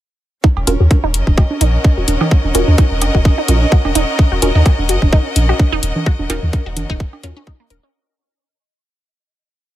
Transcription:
0.44 C#4 D#4 D#5, kick
0.54 D#1 A#4, cowbell
0.67 D#1 C#4 F4 F#4 A#4, closed hi-hat, high conga
0.80 D#2 F#4
0.91 kick, closed hi-hat, high conga
1.04 D#1 D#4
1.14 F#1, closed hi-hat
1.19 D#5
1.27 D#1, kick, high conga
1.38 F#4, kick, cowbell
1.51 high conga
1.59 A#1 D#4 F#5, closed hi-hat
1.84 kick, high conga
1.97 D#1 F#4
2.08 D#1, closed hi-hat, high conga
2.21 D#4, cowbell, low conga
2.31 kick
2.44 D#1, high conga
2.55 D#1 C#4 F4 F#4 A#4, closed hi-hat
2.68 D#2, high conga
2.78 D#4, kick, closed hi-hat
2.91 D#1
3.02 F#1, closed hi-hat, cowbell, high conga
3.15 D#1 F#4, kick
3.25 kick, high conga
3.38 D#4
3.48 A#1 C#4 F4 F#4 A#4, closed hi-hat
3.62 high conga
3.72 F#4, kick
3.85 D#1, cowbell, high conga
3.95 D#1 D#4, closed hi-hat
4.19 kick, high conga
4.32 D#1 F#4
4.42 D#1 C#4 F4 F#4 A#4, closed hi-hat, high conga
4.55 D#2 D#4
4.66 kick, closed hi-hat, cowbell
4.79 D#1, high conga
4.89 F#1 F#4, closed hi-hat
5.02 D#1, kick, high conga
5.13 D#4, kick
5.36 A#1, closed hi-hat, high conga
5.49 F#4, cowbell
5.59 kick, high conga
5.72 D#1 D#4
5.83 D#1, closed hi-hat
5.96 high conga, low conga
6.06 F#4, kick
6.19 D#1, high conga
6.30 D#1 C#4 D#4 F4 F#4 A#4, closed hi-hat, cowbell
6.43 D#2, low conga
6.53 kick, closed hi-hat, high conga
6.66 D#1 F#4
6.77 F#1, closed hi-hat, high conga, low conga
6.90 D#1 D#4, kick
7.00 kick
7.13 cowbell, high conga
7.23 D#2 C#4 F4 F#4 A#4, closed hi-hat
7.36 C#4, high conga
7.47 D#4, kick
7.60 A#3
7.70 D#1 A#4, closed hi-hat, high conga
7.83 C#4

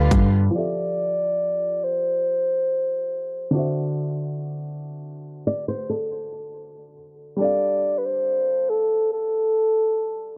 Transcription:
Already playing: B2 D3 G3 F4 G4 A4 B4 F5
0.11 G2, kick, closed hi-hat
0.51 F3 F4 G4
0.55 A4 D5 E5
1.84 C5
3.51 D3 D4
3.55 F#4 C5 E5
5.47 D5
5.68 C5
5.90 A4
7.36 G3 D4 A4
7.41 D5 F5
7.98 B4
8.05 C5
8.70 A4
9.13 A4

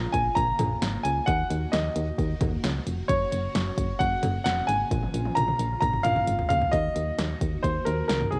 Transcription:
Already playing: C#3 A#3 F4
0.12 A#1 G#5, kick, closed hi-hat
0.35 A#1 A#5, kick, closed hi-hat
0.59 A#1, closed hi-hat, mid tom, cowbell
0.82 G#1, snare, closed hi-hat
1.03 C#2 G#5, closed hi-hat
1.26 D#2 D#3 F#4 F#5, kick, closed hi-hat
1.50 D#2, closed hi-hat
1.72 D#2 D#5, snare, closed hi-hat
1.96 D#2, closed hi-hat
2.18 D#2, kick, closed hi-hat
2.41 D#2, kick, closed hi-hat, mid tom, cowbell
2.64 C#2, snare, closed hi-hat
2.87 F1, closed hi-hat
3.08 F#1 C#3 C#5, kick, closed hi-hat
3.32 F#1, closed hi-hat
3.55 F#1, snare, closed hi-hat
3.78 F#1, kick, closed hi-hat
3.99 F#1 F#5, kick, closed hi-hat
4.23 F#1, closed hi-hat, mid tom, cowbell
4.44 F1 F#5, snare, closed hi-hat
4.67 G#1 G#5, closed hi-hat
4.91 A#1 F4, kick, closed hi-hat, high tom
5.03 high tom
5.14 A#1, closed hi-hat
5.25 high tom
5.35 A#1 A#5, closed hi-hat, mid tom
5.48 mid tom
5.59 A#1, closed hi-hat
5.81 A#1 A#5, kick, closed hi-hat, mid tom
5.93 mid tom
6.03 A#1 F5, closed hi-hat, mid tom
6.16 mid tom
6.28 G#1, closed hi-hat
6.39 floor tom
6.49 C#2 F5, closed hi-hat, floor tom
6.62 floor tom
6.72 D#2 D#3 A#3 F#4 D#5, kick, closed hi-hat
6.96 D#2, closed hi-hat
7.18 D#2, snare, closed hi-hat
7.41 D#2, kick, closed hi-hat
7.63 D#2 C5, kick, closed hi-hat
7.85 D#2 A#4, closed hi-hat
8.08 C#2 A#4, snare, closed hi-hat
8.21 mid tom
8.31 C2 G#4, closed hi-hat

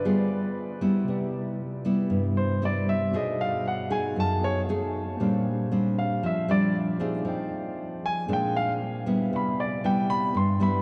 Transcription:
Already playing: B4
0.05 G3 B3 F4 G#4
0.81 G3 B3 E4
1.04 C3 E4 G4
1.09 B4 D5
1.85 G3 B3 E4
2.10 G2
2.37 C5
2.62 G3 B3 E4 D5
2.89 E5
3.11 B2 A3 B3 D#4 F#4 G#4
3.16 C#5 D#5
3.41 F5
3.68 F#5
3.90 A3 D#4 G#4 G#5
4.16 F#2 A5
4.40 B3 F#4 G#4 A4 C#5 D#5
4.44 C#5
4.69 A3 D#4 G#4
5.17 A#2 G3 A#3 C4 D4 G4 C5
5.21 D5 F5
5.72 G3 C4 D4
5.98 F5
6.23 F3 E5
6.48 G3 C4 D4 D5
6.99 A#3 C4 D#4 G4 G#4 C5 D5 F5
7.23 F3 G#4 C5
7.27 D#5 G5
8.06 G#5
8.26 A#2 G#3 A#3 C4 D4 G#4 C5
8.31 D5 F5 G5
8.57 F5
9.06 G3 B3 E4
9.31 C3 G4 B4 D5
9.35 E5 B5
9.60 D5
9.84 G3 B3 E4 G5
10.10 B5
10.35 G2 C6
10.60 G3 B3 E4 B5

